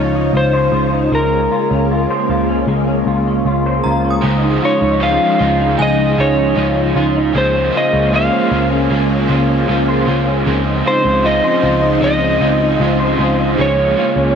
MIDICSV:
0, 0, Header, 1, 7, 480
1, 0, Start_track
1, 0, Tempo, 779221
1, 688, Time_signature, 4, 2, 24, 8
1, 8841, End_track
2, 0, Start_track
2, 0, Title_t, "Synth bell"
2, 0, Program_c, 0, 98
2, 2363, Note_on_c, 0, 82, 50
2, 2528, Note_on_c, 0, 87, 46
2, 2821, Note_off_c, 0, 82, 0
2, 2964, Note_off_c, 0, 87, 0
2, 3565, Note_on_c, 0, 80, 68
2, 4742, Note_off_c, 0, 80, 0
2, 8841, End_track
3, 0, Start_track
3, 0, Title_t, "Electric slide guitar"
3, 0, Program_c, 1, 29
3, 0, Note_on_c, 1, 73, 87
3, 192, Note_off_c, 1, 73, 0
3, 227, Note_on_c, 1, 72, 75
3, 707, Note_on_c, 1, 70, 74
3, 712, Note_off_c, 1, 72, 0
3, 1633, Note_off_c, 1, 70, 0
3, 2865, Note_on_c, 1, 73, 76
3, 3098, Note_on_c, 1, 77, 94
3, 3104, Note_off_c, 1, 73, 0
3, 3583, Note_off_c, 1, 77, 0
3, 3586, Note_on_c, 1, 75, 83
3, 3820, Note_on_c, 1, 73, 80
3, 3824, Note_off_c, 1, 75, 0
3, 4542, Note_off_c, 1, 73, 0
3, 4544, Note_on_c, 1, 72, 84
3, 4783, Note_off_c, 1, 72, 0
3, 4788, Note_on_c, 1, 75, 82
3, 5022, Note_off_c, 1, 75, 0
3, 5024, Note_on_c, 1, 77, 82
3, 6191, Note_off_c, 1, 77, 0
3, 6698, Note_on_c, 1, 72, 87
3, 6935, Note_on_c, 1, 75, 95
3, 6940, Note_off_c, 1, 72, 0
3, 7409, Note_off_c, 1, 75, 0
3, 7416, Note_on_c, 1, 75, 96
3, 8383, Note_off_c, 1, 75, 0
3, 8385, Note_on_c, 1, 73, 77
3, 8841, Note_off_c, 1, 73, 0
3, 8841, End_track
4, 0, Start_track
4, 0, Title_t, "Clean electric guitar"
4, 0, Program_c, 2, 27
4, 0, Note_on_c, 2, 56, 71
4, 0, Note_on_c, 2, 63, 54
4, 0, Note_on_c, 2, 65, 53
4, 0, Note_on_c, 2, 72, 55
4, 86, Note_off_c, 2, 63, 0
4, 94, Note_on_c, 2, 63, 50
4, 209, Note_off_c, 2, 65, 0
4, 211, Note_on_c, 2, 65, 53
4, 326, Note_off_c, 2, 72, 0
4, 328, Note_on_c, 2, 72, 60
4, 452, Note_off_c, 2, 65, 0
4, 454, Note_on_c, 2, 65, 52
4, 564, Note_off_c, 2, 63, 0
4, 571, Note_on_c, 2, 63, 50
4, 689, Note_off_c, 2, 56, 0
4, 692, Note_on_c, 2, 56, 70
4, 738, Note_off_c, 2, 63, 0
4, 815, Note_on_c, 2, 61, 50
4, 833, Note_off_c, 2, 72, 0
4, 930, Note_off_c, 2, 65, 0
4, 933, Note_on_c, 2, 65, 51
4, 1053, Note_off_c, 2, 61, 0
4, 1056, Note_on_c, 2, 61, 50
4, 1176, Note_off_c, 2, 65, 0
4, 1178, Note_on_c, 2, 65, 50
4, 1296, Note_on_c, 2, 72, 56
4, 1414, Note_off_c, 2, 65, 0
4, 1416, Note_on_c, 2, 65, 52
4, 1531, Note_off_c, 2, 61, 0
4, 1533, Note_on_c, 2, 61, 51
4, 1649, Note_off_c, 2, 56, 0
4, 1651, Note_on_c, 2, 56, 74
4, 1767, Note_off_c, 2, 61, 0
4, 1769, Note_on_c, 2, 61, 53
4, 1890, Note_off_c, 2, 65, 0
4, 1892, Note_on_c, 2, 65, 51
4, 2014, Note_off_c, 2, 61, 0
4, 2017, Note_on_c, 2, 61, 49
4, 2131, Note_off_c, 2, 65, 0
4, 2133, Note_on_c, 2, 65, 55
4, 2253, Note_off_c, 2, 72, 0
4, 2256, Note_on_c, 2, 72, 55
4, 2373, Note_off_c, 2, 65, 0
4, 2376, Note_on_c, 2, 65, 50
4, 2489, Note_off_c, 2, 61, 0
4, 2491, Note_on_c, 2, 61, 48
4, 2609, Note_off_c, 2, 56, 0
4, 2611, Note_on_c, 2, 56, 75
4, 2729, Note_off_c, 2, 61, 0
4, 2731, Note_on_c, 2, 63, 51
4, 2750, Note_off_c, 2, 65, 0
4, 2848, Note_on_c, 2, 65, 49
4, 2958, Note_off_c, 2, 63, 0
4, 2965, Note_on_c, 2, 63, 50
4, 3086, Note_off_c, 2, 65, 0
4, 3088, Note_on_c, 2, 65, 53
4, 3329, Note_off_c, 2, 65, 0
4, 3331, Note_on_c, 2, 65, 48
4, 3444, Note_off_c, 2, 63, 0
4, 3452, Note_on_c, 2, 63, 53
4, 3562, Note_off_c, 2, 56, 0
4, 3564, Note_on_c, 2, 56, 72
4, 3678, Note_off_c, 2, 63, 0
4, 3686, Note_on_c, 2, 63, 53
4, 3802, Note_off_c, 2, 65, 0
4, 3804, Note_on_c, 2, 65, 51
4, 3920, Note_off_c, 2, 63, 0
4, 3927, Note_on_c, 2, 63, 54
4, 4041, Note_off_c, 2, 65, 0
4, 4044, Note_on_c, 2, 65, 52
4, 4282, Note_off_c, 2, 65, 0
4, 4285, Note_on_c, 2, 65, 48
4, 4403, Note_off_c, 2, 63, 0
4, 4410, Note_on_c, 2, 63, 47
4, 4412, Note_off_c, 2, 72, 0
4, 4529, Note_off_c, 2, 56, 0
4, 4531, Note_on_c, 2, 56, 80
4, 4577, Note_off_c, 2, 63, 0
4, 4650, Note_on_c, 2, 61, 50
4, 4770, Note_off_c, 2, 65, 0
4, 4772, Note_on_c, 2, 65, 53
4, 4883, Note_off_c, 2, 61, 0
4, 4885, Note_on_c, 2, 61, 51
4, 5006, Note_off_c, 2, 65, 0
4, 5009, Note_on_c, 2, 65, 56
4, 5128, Note_on_c, 2, 72, 52
4, 5247, Note_off_c, 2, 65, 0
4, 5249, Note_on_c, 2, 65, 50
4, 5360, Note_off_c, 2, 61, 0
4, 5363, Note_on_c, 2, 61, 53
4, 5485, Note_off_c, 2, 56, 0
4, 5487, Note_on_c, 2, 56, 73
4, 5602, Note_off_c, 2, 61, 0
4, 5604, Note_on_c, 2, 61, 53
4, 5724, Note_off_c, 2, 65, 0
4, 5727, Note_on_c, 2, 65, 51
4, 5843, Note_off_c, 2, 61, 0
4, 5845, Note_on_c, 2, 61, 53
4, 5964, Note_off_c, 2, 65, 0
4, 5967, Note_on_c, 2, 65, 60
4, 6085, Note_off_c, 2, 72, 0
4, 6088, Note_on_c, 2, 72, 58
4, 6206, Note_off_c, 2, 65, 0
4, 6208, Note_on_c, 2, 65, 48
4, 6326, Note_off_c, 2, 61, 0
4, 6329, Note_on_c, 2, 61, 51
4, 6442, Note_off_c, 2, 56, 0
4, 6444, Note_on_c, 2, 56, 78
4, 6561, Note_off_c, 2, 61, 0
4, 6563, Note_on_c, 2, 63, 54
4, 6582, Note_off_c, 2, 65, 0
4, 6684, Note_on_c, 2, 65, 52
4, 6791, Note_off_c, 2, 63, 0
4, 6799, Note_on_c, 2, 63, 53
4, 6921, Note_off_c, 2, 65, 0
4, 6923, Note_on_c, 2, 65, 58
4, 7044, Note_off_c, 2, 72, 0
4, 7046, Note_on_c, 2, 72, 57
4, 7162, Note_off_c, 2, 65, 0
4, 7165, Note_on_c, 2, 65, 52
4, 7273, Note_off_c, 2, 63, 0
4, 7280, Note_on_c, 2, 63, 53
4, 7397, Note_off_c, 2, 56, 0
4, 7399, Note_on_c, 2, 56, 77
4, 7517, Note_off_c, 2, 63, 0
4, 7524, Note_on_c, 2, 63, 53
4, 7641, Note_off_c, 2, 65, 0
4, 7644, Note_on_c, 2, 65, 58
4, 7758, Note_off_c, 2, 63, 0
4, 7766, Note_on_c, 2, 63, 53
4, 7884, Note_off_c, 2, 65, 0
4, 7886, Note_on_c, 2, 65, 58
4, 8003, Note_off_c, 2, 72, 0
4, 8006, Note_on_c, 2, 72, 61
4, 8125, Note_off_c, 2, 65, 0
4, 8128, Note_on_c, 2, 65, 51
4, 8240, Note_off_c, 2, 63, 0
4, 8248, Note_on_c, 2, 63, 51
4, 8364, Note_off_c, 2, 56, 0
4, 8367, Note_on_c, 2, 56, 74
4, 8416, Note_off_c, 2, 63, 0
4, 8491, Note_on_c, 2, 61, 48
4, 8510, Note_off_c, 2, 72, 0
4, 8606, Note_off_c, 2, 65, 0
4, 8608, Note_on_c, 2, 65, 55
4, 8724, Note_off_c, 2, 61, 0
4, 8727, Note_on_c, 2, 61, 51
4, 8841, Note_off_c, 2, 56, 0
4, 8841, Note_off_c, 2, 61, 0
4, 8841, Note_off_c, 2, 65, 0
4, 8841, End_track
5, 0, Start_track
5, 0, Title_t, "Overdriven electric guitar"
5, 0, Program_c, 3, 29
5, 2597, Note_on_c, 3, 49, 81
5, 2600, Note_on_c, 3, 53, 75
5, 2607, Note_on_c, 3, 60, 83
5, 2611, Note_on_c, 3, 68, 83
5, 2612, Note_on_c, 3, 63, 81
5, 2617, Note_on_c, 3, 72, 91
5, 2841, Note_off_c, 3, 68, 0
5, 2843, Note_off_c, 3, 49, 0
5, 2844, Note_off_c, 3, 53, 0
5, 2847, Note_off_c, 3, 60, 0
5, 2848, Note_on_c, 3, 68, 42
5, 2850, Note_off_c, 3, 63, 0
5, 2853, Note_off_c, 3, 72, 0
5, 2858, Note_on_c, 3, 63, 40
5, 3077, Note_on_c, 3, 49, 66
5, 3081, Note_on_c, 3, 53, 67
5, 3083, Note_off_c, 3, 63, 0
5, 3085, Note_off_c, 3, 68, 0
5, 3087, Note_on_c, 3, 60, 70
5, 3090, Note_on_c, 3, 63, 73
5, 3092, Note_on_c, 3, 68, 72
5, 3094, Note_on_c, 3, 72, 70
5, 3313, Note_off_c, 3, 72, 0
5, 3320, Note_off_c, 3, 68, 0
5, 3320, Note_on_c, 3, 72, 51
5, 3323, Note_off_c, 3, 49, 0
5, 3324, Note_off_c, 3, 53, 0
5, 3327, Note_off_c, 3, 63, 0
5, 3327, Note_on_c, 3, 68, 43
5, 3328, Note_off_c, 3, 60, 0
5, 3334, Note_on_c, 3, 63, 43
5, 3342, Note_on_c, 3, 60, 37
5, 3549, Note_off_c, 3, 60, 0
5, 3556, Note_on_c, 3, 60, 47
5, 3559, Note_off_c, 3, 63, 0
5, 3564, Note_off_c, 3, 72, 0
5, 3566, Note_on_c, 3, 63, 56
5, 3568, Note_off_c, 3, 68, 0
5, 3575, Note_on_c, 3, 68, 63
5, 3581, Note_on_c, 3, 72, 58
5, 3795, Note_off_c, 3, 68, 0
5, 3802, Note_off_c, 3, 60, 0
5, 3802, Note_on_c, 3, 68, 40
5, 3807, Note_off_c, 3, 63, 0
5, 3814, Note_on_c, 3, 63, 41
5, 3815, Note_off_c, 3, 72, 0
5, 4035, Note_on_c, 3, 49, 68
5, 4037, Note_off_c, 3, 63, 0
5, 4038, Note_on_c, 3, 53, 66
5, 4043, Note_off_c, 3, 68, 0
5, 4045, Note_on_c, 3, 63, 79
5, 4051, Note_on_c, 3, 68, 71
5, 4280, Note_off_c, 3, 68, 0
5, 4282, Note_off_c, 3, 49, 0
5, 4283, Note_off_c, 3, 53, 0
5, 4287, Note_off_c, 3, 63, 0
5, 4288, Note_on_c, 3, 68, 42
5, 4296, Note_on_c, 3, 63, 45
5, 4516, Note_on_c, 3, 49, 66
5, 4521, Note_off_c, 3, 68, 0
5, 4522, Note_off_c, 3, 63, 0
5, 4522, Note_on_c, 3, 53, 67
5, 4522, Note_on_c, 3, 58, 71
5, 4524, Note_on_c, 3, 65, 74
5, 4528, Note_on_c, 3, 68, 76
5, 4533, Note_on_c, 3, 72, 74
5, 4748, Note_off_c, 3, 72, 0
5, 4756, Note_on_c, 3, 72, 48
5, 4762, Note_off_c, 3, 49, 0
5, 4762, Note_off_c, 3, 68, 0
5, 4765, Note_off_c, 3, 53, 0
5, 4765, Note_off_c, 3, 58, 0
5, 4766, Note_off_c, 3, 65, 0
5, 4770, Note_on_c, 3, 68, 44
5, 4776, Note_on_c, 3, 65, 38
5, 4783, Note_on_c, 3, 58, 40
5, 5001, Note_on_c, 3, 49, 64
5, 5002, Note_off_c, 3, 58, 0
5, 5002, Note_off_c, 3, 72, 0
5, 5003, Note_off_c, 3, 65, 0
5, 5005, Note_on_c, 3, 53, 65
5, 5009, Note_off_c, 3, 68, 0
5, 5009, Note_on_c, 3, 58, 73
5, 5011, Note_on_c, 3, 65, 69
5, 5016, Note_on_c, 3, 68, 80
5, 5017, Note_on_c, 3, 72, 73
5, 5234, Note_off_c, 3, 72, 0
5, 5241, Note_on_c, 3, 72, 49
5, 5243, Note_off_c, 3, 68, 0
5, 5245, Note_off_c, 3, 49, 0
5, 5247, Note_off_c, 3, 53, 0
5, 5249, Note_off_c, 3, 58, 0
5, 5250, Note_off_c, 3, 65, 0
5, 5250, Note_on_c, 3, 68, 41
5, 5261, Note_on_c, 3, 65, 44
5, 5270, Note_on_c, 3, 58, 40
5, 5474, Note_off_c, 3, 58, 0
5, 5481, Note_off_c, 3, 65, 0
5, 5482, Note_on_c, 3, 58, 55
5, 5485, Note_off_c, 3, 72, 0
5, 5488, Note_on_c, 3, 65, 59
5, 5489, Note_off_c, 3, 68, 0
5, 5497, Note_on_c, 3, 68, 54
5, 5506, Note_on_c, 3, 72, 67
5, 5706, Note_off_c, 3, 72, 0
5, 5711, Note_off_c, 3, 68, 0
5, 5713, Note_on_c, 3, 72, 58
5, 5718, Note_on_c, 3, 68, 54
5, 5719, Note_off_c, 3, 65, 0
5, 5725, Note_off_c, 3, 58, 0
5, 5727, Note_on_c, 3, 65, 46
5, 5733, Note_on_c, 3, 58, 46
5, 5960, Note_off_c, 3, 58, 0
5, 5961, Note_off_c, 3, 72, 0
5, 5963, Note_off_c, 3, 68, 0
5, 5963, Note_on_c, 3, 49, 79
5, 5967, Note_off_c, 3, 65, 0
5, 5967, Note_on_c, 3, 53, 74
5, 5967, Note_on_c, 3, 58, 82
5, 5975, Note_on_c, 3, 65, 85
5, 5976, Note_on_c, 3, 68, 79
5, 5982, Note_on_c, 3, 72, 83
5, 6194, Note_off_c, 3, 72, 0
5, 6201, Note_on_c, 3, 72, 51
5, 6205, Note_off_c, 3, 68, 0
5, 6206, Note_off_c, 3, 49, 0
5, 6207, Note_off_c, 3, 53, 0
5, 6208, Note_off_c, 3, 58, 0
5, 6211, Note_off_c, 3, 65, 0
5, 6213, Note_on_c, 3, 68, 54
5, 6220, Note_on_c, 3, 65, 47
5, 6227, Note_on_c, 3, 58, 47
5, 6440, Note_on_c, 3, 49, 73
5, 6444, Note_off_c, 3, 58, 0
5, 6445, Note_off_c, 3, 72, 0
5, 6445, Note_on_c, 3, 53, 79
5, 6446, Note_off_c, 3, 68, 0
5, 6446, Note_on_c, 3, 60, 86
5, 6448, Note_off_c, 3, 65, 0
5, 6451, Note_on_c, 3, 63, 84
5, 6453, Note_on_c, 3, 68, 82
5, 6455, Note_on_c, 3, 72, 83
5, 6673, Note_off_c, 3, 72, 0
5, 6680, Note_on_c, 3, 72, 49
5, 6683, Note_off_c, 3, 68, 0
5, 6684, Note_off_c, 3, 49, 0
5, 6687, Note_off_c, 3, 53, 0
5, 6687, Note_off_c, 3, 60, 0
5, 6690, Note_off_c, 3, 63, 0
5, 6690, Note_on_c, 3, 68, 44
5, 6699, Note_on_c, 3, 63, 41
5, 6707, Note_on_c, 3, 60, 39
5, 6922, Note_on_c, 3, 49, 81
5, 6923, Note_off_c, 3, 60, 0
5, 6924, Note_off_c, 3, 63, 0
5, 6924, Note_off_c, 3, 72, 0
5, 6924, Note_on_c, 3, 53, 76
5, 6929, Note_off_c, 3, 68, 0
5, 6930, Note_on_c, 3, 60, 83
5, 6932, Note_on_c, 3, 63, 83
5, 6938, Note_on_c, 3, 68, 75
5, 6939, Note_on_c, 3, 72, 78
5, 7151, Note_off_c, 3, 72, 0
5, 7159, Note_on_c, 3, 72, 53
5, 7164, Note_off_c, 3, 68, 0
5, 7165, Note_off_c, 3, 49, 0
5, 7166, Note_off_c, 3, 53, 0
5, 7168, Note_off_c, 3, 63, 0
5, 7169, Note_off_c, 3, 60, 0
5, 7171, Note_on_c, 3, 68, 49
5, 7176, Note_on_c, 3, 63, 40
5, 7185, Note_on_c, 3, 60, 40
5, 7390, Note_off_c, 3, 60, 0
5, 7397, Note_on_c, 3, 60, 55
5, 7402, Note_off_c, 3, 63, 0
5, 7403, Note_off_c, 3, 72, 0
5, 7409, Note_on_c, 3, 63, 59
5, 7410, Note_off_c, 3, 68, 0
5, 7418, Note_on_c, 3, 68, 57
5, 7425, Note_on_c, 3, 72, 62
5, 7634, Note_off_c, 3, 72, 0
5, 7641, Note_on_c, 3, 72, 49
5, 7643, Note_off_c, 3, 60, 0
5, 7644, Note_off_c, 3, 68, 0
5, 7649, Note_off_c, 3, 63, 0
5, 7652, Note_on_c, 3, 68, 48
5, 7659, Note_on_c, 3, 63, 46
5, 7668, Note_on_c, 3, 60, 39
5, 7883, Note_on_c, 3, 49, 70
5, 7884, Note_off_c, 3, 60, 0
5, 7885, Note_off_c, 3, 72, 0
5, 7889, Note_off_c, 3, 63, 0
5, 7890, Note_off_c, 3, 68, 0
5, 7890, Note_on_c, 3, 53, 72
5, 7892, Note_on_c, 3, 60, 65
5, 7897, Note_on_c, 3, 63, 70
5, 7899, Note_on_c, 3, 68, 79
5, 7901, Note_on_c, 3, 72, 72
5, 8106, Note_off_c, 3, 72, 0
5, 8114, Note_on_c, 3, 72, 48
5, 8118, Note_off_c, 3, 68, 0
5, 8124, Note_off_c, 3, 63, 0
5, 8125, Note_on_c, 3, 68, 52
5, 8126, Note_off_c, 3, 49, 0
5, 8129, Note_off_c, 3, 53, 0
5, 8130, Note_off_c, 3, 60, 0
5, 8131, Note_on_c, 3, 63, 47
5, 8139, Note_on_c, 3, 60, 49
5, 8355, Note_on_c, 3, 49, 69
5, 8359, Note_off_c, 3, 60, 0
5, 8361, Note_off_c, 3, 72, 0
5, 8361, Note_on_c, 3, 53, 74
5, 8361, Note_on_c, 3, 58, 73
5, 8363, Note_off_c, 3, 68, 0
5, 8365, Note_off_c, 3, 63, 0
5, 8367, Note_on_c, 3, 65, 76
5, 8371, Note_on_c, 3, 68, 76
5, 8596, Note_off_c, 3, 68, 0
5, 8601, Note_off_c, 3, 49, 0
5, 8603, Note_off_c, 3, 65, 0
5, 8604, Note_on_c, 3, 68, 48
5, 8605, Note_off_c, 3, 53, 0
5, 8605, Note_off_c, 3, 58, 0
5, 8611, Note_on_c, 3, 65, 38
5, 8621, Note_on_c, 3, 58, 39
5, 8841, Note_off_c, 3, 58, 0
5, 8841, Note_off_c, 3, 65, 0
5, 8841, Note_off_c, 3, 68, 0
5, 8841, End_track
6, 0, Start_track
6, 0, Title_t, "String machine"
6, 0, Program_c, 4, 50
6, 0, Note_on_c, 4, 49, 77
6, 0, Note_on_c, 4, 53, 70
6, 0, Note_on_c, 4, 61, 84
6, 0, Note_on_c, 4, 63, 79
6, 667, Note_off_c, 4, 63, 0
6, 669, Note_off_c, 4, 53, 0
6, 680, Note_on_c, 4, 56, 67
6, 683, Note_on_c, 4, 58, 71
6, 2584, Note_off_c, 4, 49, 0
6, 2584, Note_off_c, 4, 61, 0
6, 2585, Note_off_c, 4, 56, 0
6, 2587, Note_off_c, 4, 58, 0
6, 2602, Note_on_c, 4, 56, 68
6, 2604, Note_on_c, 4, 49, 73
6, 2604, Note_on_c, 4, 53, 67
6, 2604, Note_on_c, 4, 63, 81
6, 4506, Note_off_c, 4, 56, 0
6, 4507, Note_off_c, 4, 49, 0
6, 4507, Note_off_c, 4, 53, 0
6, 4507, Note_off_c, 4, 63, 0
6, 4527, Note_on_c, 4, 61, 80
6, 4532, Note_on_c, 4, 56, 65
6, 4533, Note_on_c, 4, 49, 72
6, 4534, Note_on_c, 4, 58, 65
6, 6428, Note_off_c, 4, 61, 0
6, 6431, Note_off_c, 4, 49, 0
6, 6431, Note_off_c, 4, 56, 0
6, 6432, Note_off_c, 4, 58, 0
6, 6444, Note_on_c, 4, 49, 75
6, 6446, Note_on_c, 4, 60, 67
6, 6446, Note_on_c, 4, 63, 79
6, 6447, Note_on_c, 4, 53, 72
6, 8347, Note_off_c, 4, 49, 0
6, 8348, Note_off_c, 4, 53, 0
6, 8348, Note_off_c, 4, 60, 0
6, 8348, Note_off_c, 4, 63, 0
6, 8367, Note_on_c, 4, 56, 70
6, 8368, Note_on_c, 4, 49, 77
6, 8368, Note_on_c, 4, 61, 86
6, 8369, Note_on_c, 4, 58, 67
6, 8841, Note_off_c, 4, 49, 0
6, 8841, Note_off_c, 4, 56, 0
6, 8841, Note_off_c, 4, 58, 0
6, 8841, Note_off_c, 4, 61, 0
6, 8841, End_track
7, 0, Start_track
7, 0, Title_t, "Picked electric bass"
7, 0, Program_c, 5, 34
7, 0, Note_on_c, 5, 37, 83
7, 179, Note_off_c, 5, 37, 0
7, 204, Note_on_c, 5, 37, 82
7, 417, Note_off_c, 5, 37, 0
7, 443, Note_on_c, 5, 37, 85
7, 657, Note_off_c, 5, 37, 0
7, 688, Note_on_c, 5, 37, 98
7, 899, Note_off_c, 5, 37, 0
7, 1052, Note_on_c, 5, 37, 80
7, 1261, Note_off_c, 5, 37, 0
7, 1411, Note_on_c, 5, 37, 91
7, 1621, Note_off_c, 5, 37, 0
7, 1646, Note_on_c, 5, 37, 92
7, 1858, Note_off_c, 5, 37, 0
7, 1883, Note_on_c, 5, 37, 79
7, 2097, Note_off_c, 5, 37, 0
7, 2124, Note_on_c, 5, 37, 86
7, 2337, Note_off_c, 5, 37, 0
7, 2370, Note_on_c, 5, 37, 79
7, 2580, Note_off_c, 5, 37, 0
7, 2608, Note_on_c, 5, 37, 98
7, 2819, Note_off_c, 5, 37, 0
7, 2967, Note_on_c, 5, 37, 74
7, 3179, Note_off_c, 5, 37, 0
7, 3329, Note_on_c, 5, 37, 90
7, 3540, Note_off_c, 5, 37, 0
7, 3565, Note_on_c, 5, 37, 93
7, 3778, Note_off_c, 5, 37, 0
7, 3808, Note_on_c, 5, 37, 82
7, 4019, Note_off_c, 5, 37, 0
7, 4045, Note_on_c, 5, 37, 85
7, 4258, Note_off_c, 5, 37, 0
7, 4282, Note_on_c, 5, 37, 84
7, 4496, Note_off_c, 5, 37, 0
7, 4523, Note_on_c, 5, 37, 98
7, 4737, Note_off_c, 5, 37, 0
7, 4885, Note_on_c, 5, 37, 78
7, 5098, Note_off_c, 5, 37, 0
7, 5243, Note_on_c, 5, 37, 89
7, 5457, Note_off_c, 5, 37, 0
7, 5484, Note_on_c, 5, 37, 94
7, 5697, Note_off_c, 5, 37, 0
7, 5724, Note_on_c, 5, 37, 82
7, 5937, Note_off_c, 5, 37, 0
7, 5967, Note_on_c, 5, 37, 89
7, 6179, Note_off_c, 5, 37, 0
7, 6205, Note_on_c, 5, 37, 90
7, 6418, Note_off_c, 5, 37, 0
7, 6446, Note_on_c, 5, 37, 102
7, 6658, Note_off_c, 5, 37, 0
7, 6805, Note_on_c, 5, 37, 72
7, 7018, Note_off_c, 5, 37, 0
7, 7165, Note_on_c, 5, 37, 91
7, 7377, Note_off_c, 5, 37, 0
7, 7404, Note_on_c, 5, 37, 98
7, 7617, Note_off_c, 5, 37, 0
7, 7642, Note_on_c, 5, 37, 82
7, 7856, Note_off_c, 5, 37, 0
7, 7882, Note_on_c, 5, 37, 89
7, 8096, Note_off_c, 5, 37, 0
7, 8124, Note_on_c, 5, 37, 85
7, 8337, Note_off_c, 5, 37, 0
7, 8368, Note_on_c, 5, 37, 99
7, 8580, Note_off_c, 5, 37, 0
7, 8721, Note_on_c, 5, 37, 83
7, 8841, Note_off_c, 5, 37, 0
7, 8841, End_track
0, 0, End_of_file